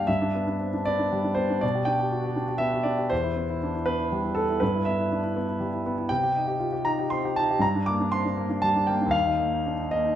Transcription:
0.00 0.10 A#3 soft
0.00 0.10 D4 soft
0.07 1.59 G2 medium
0.07 0.86 E5 medium
0.22 0.42 D4 medium
0.35 0.56 B3 soft
0.47 0.68 D4 soft
0.60 0.73 C4 soft
0.74 0.94 D4 soft
0.85 1.07 B3 medium
0.85 1.37 D5 medium
0.99 1.19 D4 medium
1.12 1.32 G3 soft
1.24 1.45 D4 soft
1.35 1.57 B3 soft
1.35 1.61 C5 medium
1.50 1.63 D4 medium
1.61 3.07 B2 medium
1.61 1.87 D5 medium
1.75 1.95 G4 medium
1.85 2.07 D4 soft
1.85 2.36 G5 medium
2.00 2.20 G4 medium
2.12 2.25 F#4 soft
2.24 2.44 G4 medium
2.36 2.56 D4 medium
2.48 2.68 G4 medium
2.58 2.80 B3 medium
2.58 2.85 E5 loud
2.73 2.94 G4 soft
2.83 3.06 D4 soft
2.83 3.10 D5 medium
2.99 3.11 G4 soft
3.10 4.57 E2 medium
3.10 3.86 C5 medium
3.23 3.44 E4 medium
3.36 3.56 B3 soft
3.50 3.70 E4 medium
3.63 3.75 D4 soft
3.75 3.94 E4 soft
3.86 4.06 B3 medium
3.86 4.36 B4 medium
4.00 4.19 E4 medium
4.12 4.32 G3 soft
4.24 4.44 E4 soft
4.35 4.56 B3 medium
4.35 4.60 A4 medium
4.50 4.62 E4 soft
4.60 6.06 G2 medium
4.60 4.85 B4 medium
4.75 4.94 E4 soft
4.85 5.06 B3 soft
4.85 5.35 E5 medium
5.00 5.19 E4 soft
5.12 5.24 D4 soft
5.23 5.43 E4 soft
5.36 5.56 B3 medium
5.48 5.68 E4 medium
5.60 5.80 G3 soft
5.73 5.93 E4 soft
5.86 6.05 B3 medium
5.98 6.10 E4 medium
6.09 7.58 C3 medium
6.09 6.84 G5 medium
6.23 6.42 G4 soft
6.36 6.55 D#4 medium
6.47 6.67 G4 medium
6.60 6.72 F4 soft
6.73 6.93 G4 medium
6.85 7.06 D#4 medium
6.85 7.10 A#5 medium
6.99 7.19 G4 medium
7.10 7.32 C4 soft
7.10 7.36 C6 medium
7.25 7.45 G4 medium
7.36 7.57 D#4 soft
7.36 7.61 A5 loud
7.50 7.62 G4 medium
7.59 9.08 G2 medium
7.59 7.86 A#5 medium
7.75 7.94 D4 soft
7.86 8.07 A#3 medium
7.86 8.11 D6 medium
8.00 8.19 D4 medium
8.12 8.24 C4 soft
8.12 8.62 C6 medium
8.25 8.45 D4 medium
8.37 8.57 A#3 medium
8.50 8.70 D4 medium
8.62 8.83 G3 medium
8.62 8.87 A5 loud
8.76 8.95 D4 medium
8.87 9.08 A#3 medium
8.87 9.13 G5 medium
9.01 9.13 D4 soft
9.06 10.12 D#2 medium
9.11 9.91 F5 medium
9.26 9.47 D#4 soft
9.39 9.60 A#3 soft
9.53 9.74 D#4 medium
9.66 9.79 D4 soft
9.79 10.00 D#4 soft
9.91 10.14 A#3 soft
9.91 10.15 D#5 medium
10.06 10.15 D#4 soft

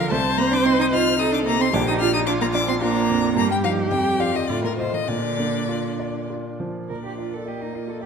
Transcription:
0.00 0.14 D2 medium
0.00 0.12 D3 medium
0.00 0.14 A#3 medium
0.00 0.14 F4 medium
0.00 0.13 A#4 loud
0.00 0.14 D5 medium
0.10 1.69 C2 medium
0.10 0.18 A3 loud
0.10 1.19 C5 loud
0.10 0.39 A5 loud
0.37 0.43 A#3 loud
0.37 0.82 C4 medium
0.37 0.55 A#5 loud
0.51 0.56 D4 loud
0.51 0.67 D6 loud
0.63 0.78 C4 loud
0.63 1.09 D#4 medium
0.63 0.79 C6 loud
0.78 0.84 D#4 loud
0.78 0.86 D#6 loud
0.92 1.18 F4 loud
0.92 1.36 D#5 loud
0.92 1.21 F6 loud
1.19 1.34 D#4 loud
1.19 1.63 D#4 medium
1.19 1.73 A4 loud
1.19 1.33 D#6 loud
1.32 1.45 D4 loud
1.32 1.39 D6 loud
1.45 1.74 C3 medium
1.45 1.59 A#3 loud
1.45 1.63 A#5 loud
1.60 1.66 C4 loud
1.60 1.75 C6 loud
1.73 3.32 A#1 loud
1.73 1.80 D4 loud
1.73 2.26 G4 loud
1.73 1.87 D6 loud
1.88 2.01 D#4 loud
1.88 1.93 D#6 loud
2.00 2.44 D4 medium
2.00 2.07 F4 loud
2.00 2.13 F6 loud
2.14 2.27 D#4 loud
2.14 2.19 D#6 loud
2.26 2.33 D4 loud
2.26 2.83 F4 loud
2.26 2.71 F4 medium
2.26 2.32 D6 loud
2.41 2.46 A#3 loud
2.41 2.47 A#5 loud
2.53 2.59 D4 loud
2.53 2.98 D5 medium
2.53 2.67 D6 loud
2.68 2.73 C4 loud
2.68 2.74 C6 loud
2.81 3.35 A#3 loud
2.81 3.37 D4 loud
2.81 3.25 F4 medium
2.81 3.35 A#5 loud
3.09 3.36 F2 medium
3.36 3.90 G2 medium
3.36 3.51 A#3 loud
3.36 4.48 G4 loud
3.36 3.50 A#5 loud
3.50 3.65 G3 loud
3.50 3.56 G5 loud
3.64 3.91 F3 loud
3.64 3.89 D#4 medium
3.64 3.89 D#5 medium
3.64 3.72 F5 loud
3.91 4.47 F2 medium
3.91 4.21 G3 medium
3.91 4.22 G5 loud
4.19 4.33 F3 medium
4.19 4.46 F4 medium
4.19 4.46 D5 medium
4.19 4.37 F5 loud
4.34 4.39 D#3 medium
4.34 4.50 D#5 loud
4.48 5.06 A2 medium
4.48 4.54 D3 loud
4.48 5.06 F4 loud
4.48 4.63 D5 loud
4.64 4.70 A#2 medium
4.64 4.77 A#4 loud
4.78 4.84 C3 medium
4.78 5.05 F4 medium
4.78 4.95 C5 loud
4.78 5.06 D#5 medium
4.92 4.98 D#3 medium
4.92 5.09 D#5 loud
5.07 6.86 A#2 medium
5.07 6.27 D3 loud
5.07 6.57 D4 medium
5.07 6.30 D5 loud
5.39 5.87 A#3 medium
5.69 6.18 F4 medium
5.99 6.48 D5 medium
6.30 6.78 F4 medium
6.60 6.89 F3 medium
6.89 8.06 A#2 soft
6.89 7.48 D4 soft
6.89 7.03 A#4 medium
6.89 7.48 D5 medium
7.04 7.26 F4 soft
7.04 7.18 G4 medium
7.18 7.35 F4 medium
7.18 7.41 D5 soft
7.31 7.49 A4 medium
7.31 7.54 A#4 soft
7.46 8.06 A#3 soft
7.46 7.63 G4 medium
7.46 7.69 D5 soft
7.46 8.01 D#5 medium
7.60 7.76 D#4 medium
7.60 7.83 A#4 soft
7.73 7.91 F4 medium
7.73 7.96 D5 soft
7.88 8.06 F4 soft
7.88 8.04 A4 medium
8.01 8.06 G4 medium
8.01 8.06 D5 soft
8.01 8.06 D5 medium

